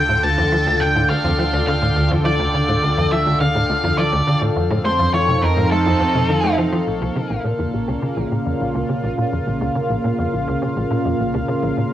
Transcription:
Already playing: sub bass D2, analog synth pad D3 D4 F4 A4 G5, lead electric guitar G5
0.09 analog synth bass A2
0.23 analog synth bass D2, lead electric guitar A5
0.38 analog synth bass F2
0.52 analog synth bass F3
0.67 analog synth bass D2
0.81 analog synth bass D3, lead electric guitar G5
0.95 analog synth bass A2
1.10 analog synth bass D2, lead electric guitar F5
1.24 analog synth bass F2
1.39 analog synth bass F3
1.53 analog synth bass D2
1.67 analog synth bass D3, lead electric guitar F5
1.82 analog synth bass A2
1.96 analog synth bass D2
2.11 analog synth bass F2
2.25 analog synth bass F3, lead electric guitar D5
2.39 analog synth bass D2
2.54 analog synth bass D3
2.68 analog synth bass A2
2.83 analog synth bass D2
2.97 analog synth bass F2
3.12 analog synth bass F3, lead electric guitar E5
3.26 analog synth bass D2
3.40 analog synth bass D3, lead electric guitar F5
3.55 analog synth bass A2
3.69 analog synth bass D2
3.84 analog synth bass F2
3.98 analog synth bass F3, lead electric guitar D5
4.13 analog synth bass D2
4.27 analog synth bass D3
4.42 analog synth bass A2
4.56 sub bass F2, analog synth bass F2, analog synth pad F3
4.70 analog synth bass A2
4.75 analog synth pad C4
4.85 analog synth bass A3, lead electric guitar C5
4.99 analog synth bass F2
5.14 analog synth bass F3, lead electric guitar C#5
5.20 analog synth pad D#4 F5
5.28 analog synth bass C3
5.43 analog synth bass F2, lead electric guitar A#4
5.57 analog synth bass A2
5.71 analog synth bass A3, lead electric guitar A4
5.86 analog synth bass F2
6.00 analog synth bass F2
6.15 analog synth bass C3
6.29 analog synth bass D#3
6.44 analog synth bass A3
6.58 analog synth bass F3
6.72 analog synth bass F3
6.87 analog synth bass A#1, analog synth pad A#2, synth texture A#4
6.98 analog synth bass C#2, analog synth pad A#3
7.16 analog synth bass C#3
7.30 analog synth bass A#1
7.44 analog synth bass A#2
7.49 analog synth pad C#3
7.59 analog synth bass F2
7.73 analog synth bass A#1
7.88 analog synth bass C#2
7.98 analog synth pad F4
8.02 analog synth bass C#3
8.17 analog synth bass A#1
8.31 analog synth bass A#2
8.46 analog synth bass F2
8.60 analog synth bass A#1
8.74 analog synth bass C#2
8.89 analog synth bass C#3
9.03 analog synth bass A#1
9.18 analog synth bass A#2
9.32 analog synth bass F2
9.47 analog synth bass A#1
9.61 analog synth bass C#2
9.75 analog synth bass C#3
9.90 analog synth bass A#1
10.04 analog synth bass A#2
10.19 analog synth bass F2
10.33 analog synth bass A#1
10.48 analog synth bass C#2
10.62 analog synth bass C#3
10.76 analog synth bass A#1
10.91 analog synth bass A#2
11.05 analog synth bass F2
11.20 analog synth bass A#1
11.34 analog synth bass C#2
11.48 analog synth bass C#3
11.63 analog synth bass A#1
11.77 analog synth bass A#2

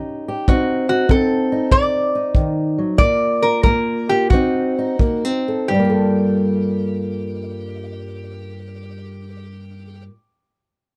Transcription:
Already playing: steel-string acoustic guitar D#3 C#4 D#4 G4
0.28 steel-string acoustic guitar G4
0.48 steel-string acoustic guitar D3 C4 D#4, resonator guitar played with a steel bar F#4, kick
0.89 steel-string acoustic guitar D#4, resonator guitar played with a steel bar F#4
1.09 steel-string acoustic guitar D3 C4, resonator guitar played with a steel bar A4, kick
1.52 steel-string acoustic guitar D#4
1.71 steel-string acoustic guitar D3, resonator guitar played with a steel bar D5, kick
2.15 steel-string acoustic guitar D#4
2.35 steel-string acoustic guitar D#3, kick
2.78 steel-string acoustic guitar F#3
2.98 steel-string acoustic guitar G2 A#3 F4, resonator guitar played with a steel bar D5, kick
3.42 steel-string acoustic guitar F4, resonator guitar played with a steel bar A#4
3.63 steel-string acoustic guitar G2 A#3, resonator guitar played with a steel bar A#4, kick
4.09 steel-string acoustic guitar F4, resonator guitar played with a steel bar G4
4.30 steel-string acoustic guitar D3 C4 D#4, resonator guitar played with a steel bar F#4, kick
4.79 steel-string acoustic guitar D#4
4.99 steel-string acoustic guitar D3 A#3, kick
5.25 steel-string acoustic guitar C4
5.48 steel-string acoustic guitar A4
5.68 steel-string acoustic guitar G2, resonator guitar played with a steel bar G4
5.74 steel-string acoustic guitar G3
5.79 steel-string acoustic guitar A#3
5.85 steel-string acoustic guitar F4
5.90 steel-string acoustic guitar A4

